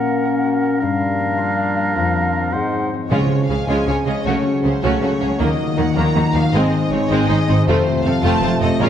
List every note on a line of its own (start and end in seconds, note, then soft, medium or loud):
0.00 0.83 A#2 soft
0.00 0.77 A#3 soft
0.00 1.18 A#3 soft
0.00 0.81 C#4 soft
0.00 0.24 A#4 soft
0.00 0.77 A#4 soft
0.00 0.80 F#5 soft
0.07 0.62 C#4 soft
0.25 2.55 A#4 soft
0.44 0.83 F#4 soft
0.63 0.83 C#4 soft
0.80 1.97 G2 soft
0.80 1.95 G3 medium
0.80 2.50 D4 soft
0.80 2.54 A#4 medium
0.80 2.54 F5 soft
1.01 2.14 F3 soft
1.19 1.75 A#3 soft
1.38 2.54 F4 medium
1.57 2.33 D4 soft
1.76 2.33 A#3 soft
1.96 2.55 F2 medium
1.96 2.52 F3 medium
2.15 2.55 F3 soft
2.34 2.55 A#3 soft
2.34 2.55 D4 soft
2.52 3.13 G#2 medium
2.52 2.92 G#3 soft
2.52 2.91 D#4 soft
2.52 2.92 C5 soft
2.52 2.92 F#5 soft
2.73 3.13 F#3 soft
2.93 3.13 C4 soft
2.93 3.14 D#4 soft
3.08 3.18 C#2 soft
3.08 3.18 C#3 soft
3.08 5.36 C#3 soft
3.08 3.65 C#3 soft
3.08 4.25 C#3 soft
3.08 4.22 F3 soft
3.08 3.28 G#3 soft
3.08 3.29 G#3 soft
3.08 3.29 C#4 soft
3.08 3.29 F4 soft
3.08 3.45 C#5 medium
3.13 4.23 G#3 soft
3.13 5.37 G#4 soft
3.32 5.42 G#3 soft
3.49 3.57 C#2 soft
3.49 3.57 C#3 soft
3.49 3.57 G#3 soft
3.49 3.57 C#4 soft
3.49 4.06 C#4 soft
3.49 3.57 G#4 soft
3.49 3.68 F5 medium
3.67 3.75 C#2 medium
3.67 3.76 C#3 soft
3.67 3.85 G#3 medium
3.67 3.85 G#3 soft
3.67 3.85 C#4 soft
3.67 3.85 F4 soft
3.67 4.28 F4 soft
3.67 4.05 G#5 medium
3.86 3.94 C#2 soft
3.86 3.95 C#3 soft
3.86 3.94 G#3 soft
3.86 3.94 C#4 soft
3.86 3.95 F4 soft
3.86 5.01 G#4 soft
3.86 3.95 C#5 soft
4.06 4.14 C#2 soft
4.06 4.14 C#3 soft
4.06 4.14 G#3 soft
4.06 4.14 C#4 soft
4.06 4.44 C#4 soft
4.06 4.14 G#4 soft
4.06 4.25 D#5 medium
4.24 4.33 C#2 soft
4.24 4.33 C#3 soft
4.24 5.41 C#3 soft
4.24 5.40 F#3 soft
4.24 6.54 F#3 soft
4.24 4.43 A3 soft
4.24 4.43 C#4 soft
4.24 4.43 F#4 soft
4.24 4.63 C#5 soft
4.46 5.42 C#4 soft
4.63 4.71 C#2 soft
4.63 4.71 C#3 soft
4.63 4.71 A3 soft
4.63 5.20 A3 soft
4.63 4.71 C#4 soft
4.63 4.72 G#4 soft
4.63 4.82 C5 medium
4.82 4.91 C#2 soft
4.82 4.91 C#3 medium
4.82 5.00 A3 soft
4.82 5.00 A3 medium
4.82 5.01 C#4 medium
4.82 5.00 F#4 soft
4.82 5.95 F#4 soft
4.82 5.40 C#5 medium
5.02 5.10 C#2 soft
5.02 5.09 C#3 soft
5.02 5.09 A3 soft
5.02 5.10 C#4 soft
5.02 5.09 F#4 soft
5.02 5.41 G#4 soft
5.02 5.09 A4 soft
5.20 5.28 C#2 soft
5.20 5.29 C#3 soft
5.20 5.28 A3 soft
5.20 5.41 A3 soft
5.20 5.28 C#4 soft
5.20 5.27 G#4 soft
5.38 5.47 D#2 medium
5.38 6.51 A#2 soft
5.38 5.47 D#3 soft
5.38 6.55 D#3 soft
5.38 5.57 A#3 medium
5.38 6.52 A#3 soft
5.38 7.63 D#4 soft
5.38 5.77 D#5 medium
5.58 6.55 A#3 soft
5.77 5.86 D#2 soft
5.77 5.85 D#3 soft
5.77 5.84 A#3 soft
5.77 5.85 A#3 soft
5.77 5.85 D#4 soft
5.77 6.33 D#4 soft
5.77 5.96 F#5 medium
5.96 6.04 D#2 medium
5.96 6.05 D#3 medium
5.96 6.14 A#3 medium
5.96 6.55 F#4 soft
5.96 6.34 A#5 medium
6.15 6.23 D#2 soft
6.15 6.23 D#3 soft
6.15 6.23 A#3 soft
6.15 6.23 D#4 soft
6.15 6.23 F#4 soft
6.15 6.55 A#4 soft
6.34 6.42 D#2 soft
6.34 6.42 D#3 soft
6.34 6.42 A#3 soft
6.34 6.42 D#4 soft
6.34 7.10 D#4 soft
6.34 6.53 F5 medium
6.53 6.61 G#1 medium
6.53 7.64 G#2 medium
6.53 6.61 G#2 medium
6.53 7.68 G#2 medium
6.53 7.64 G#3 soft
6.53 6.72 G#3 medium
6.53 6.71 C4 medium
6.53 8.80 C4 medium
6.53 6.71 C4 medium
6.53 6.91 D#5 medium
6.73 7.69 D#3 soft
6.90 6.99 G#1 soft
6.90 6.99 G#2 soft
6.90 7.00 G#3 soft
6.90 6.99 C4 soft
6.90 7.48 C4 soft
6.90 7.00 C4 soft
6.90 6.99 D#4 soft
6.90 7.10 C#5 medium
7.09 7.17 G#1 medium
7.09 7.18 G#2 medium
7.09 7.27 G#3 medium
7.09 7.28 G#3 medium
7.09 7.28 C4 medium
7.09 7.69 D#4 soft
7.09 7.66 D#5 medium
7.28 7.37 G#1 soft
7.28 7.37 G#2 soft
7.28 7.37 G#3 medium
7.28 7.37 C4 medium
7.28 7.36 D#4 medium
7.28 7.36 G#4 soft
7.28 7.69 G#4 soft
7.48 7.56 G#1 soft
7.48 7.56 G#2 soft
7.48 7.56 G#3 medium
7.48 7.55 C4 soft
7.48 7.56 C4 soft
7.48 8.04 C4 soft
7.48 7.56 D#4 soft
7.67 7.75 F1 medium
7.67 7.75 F2 medium
7.67 8.82 F2 medium
7.67 8.78 C3 medium
7.67 8.78 A3 medium
7.67 7.85 A3 medium
7.67 7.85 C4 medium
7.67 7.85 F4 medium
7.67 8.89 F4 medium
7.67 8.04 C5 medium
7.87 8.82 C3 soft
8.04 8.12 F1 soft
8.04 8.12 F2 soft
8.04 8.12 A3 soft
8.04 8.12 C4 soft
8.04 8.13 C4 soft
8.04 8.61 C4 soft
8.04 8.13 A4 medium
8.04 8.23 F5 medium
8.22 8.31 F1 medium
8.22 8.31 F2 medium
8.22 8.40 A3 medium
8.22 8.41 A3 medium
8.22 8.41 C4 medium
8.22 8.40 F4 medium
8.22 8.89 F4 soft
8.22 8.60 A5 medium
8.42 8.50 F1 soft
8.42 8.50 F2 soft
8.42 8.50 A3 medium
8.42 8.50 C4 medium
8.42 8.49 F4 medium
8.42 8.82 A4 soft
8.42 8.49 C5 soft
8.61 8.68 F1 soft
8.61 8.69 F2 medium
8.61 8.69 A3 medium
8.61 8.69 C4 soft
8.61 8.82 C4 soft
8.61 8.69 A4 medium
8.61 8.80 D#5 medium
8.79 8.87 A#1 medium
8.79 8.89 A#2 medium
8.79 8.88 A#2 medium
8.79 8.89 A#2 medium
8.79 8.89 G#3 medium
8.79 8.89 A#3 medium
8.79 8.89 C#4 medium
8.79 8.89 F4 medium
8.79 8.89 C#5 medium